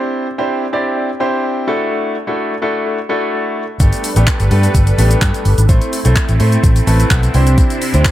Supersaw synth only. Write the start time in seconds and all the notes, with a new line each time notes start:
3.80 G3 D4 A4 B4
5.69 A3 C4 E4
7.34 C3 D4